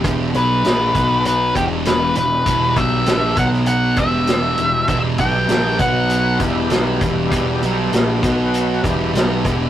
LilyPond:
<<
  \new Staff \with { instrumentName = "Lead electric guitar" } { \time 4/4 \key e \minor \tempo 4 = 99 r8 b'4. b'8 g'8 b'8 b'8~ | b'8 e''4 fis''8 fis''8 e''4. | e''8 g''4 fis''4 r4. | r1 | }
  \new Staff \with { instrumentName = "Tonewheel organ" } { \time 4/4 \key e \minor <g b e' g'>4. <fis b fis' b'>8~ \tuplet 3/2 { <fis b fis' b'>8. <gis c' f' gis'>8 <g b e' g'>16~ } <g b e' g'>4~ | <g b e' g'>4. <fis b fis' b'>4 <g b e' g'>4.~ | <g b e' g'>4. <fis b fis' b'>4 <g b e' g'>4.~ | <g b e' g'>4. <fis b fis' b'>4 <g b e' g'>4. | }
  \new Staff \with { instrumentName = "Distorted electric guitar" } { \clef bass \time 4/4 \key e \minor <e, b, e>8 <b, fis b>8 <ais, f ais>8 <b, fis b>4 <e, b, e>4 <e, b,>8 | <e, b, e>8 <b, fis b>8 <ais, f ais>8 <b, fis b>4 <e, b, e>4 <e, b,>8 | <e, b, e>8 <b, fis b>8 <ais, f ais>8 <b, fis b>4 <e, b, e>8 <b, fis b>8 <e, b, e>8 | <e, b, e>8 <b, fis b>8 <ais, f ais>8 <b, fis b>4 <e, b, e>8 <b, fis b>8 <e, b, e>8 | }
  \new Staff \with { instrumentName = "Picked electric bass" } { \clef bass \time 4/4 \key e \minor e,,8 b,,8 ais,,8 b,,4 e,,4 e,,8 | e,,8 b,,8 ais,,8 b,,4 e,,4 e,,8 | e,,8 b,,8 ais,,8 b,,4 e,,8 b,,8 e,,8 | e,,8 b,,8 ais,,8 b,,4 e,,8 b,,8 e,,8 | }
  \new DrumStaff \with { instrumentName = "Drums" } \drummode { \time 4/4 <hh bd>8 hh8 <hh sn>8 <hh bd>8 hh8 <hh bd>8 <hh sn>8 hh8 | <hh bd>8 <hh bd>8 <hh sn>8 <hh bd sn>16 sn16 hh8 <hh bd>8 <hh sn>8 hh8 | <hh bd>8 <hh bd>8 <hh sn>8 <hh bd>8 hh8 <hh bd>8 <hh sn>8 <hh bd>8 | <hh bd>8 hh8 <hh sn>8 <hh bd sn>8 hh8 <hh bd>8 <hh sn>8 <hh bd>8 | }
>>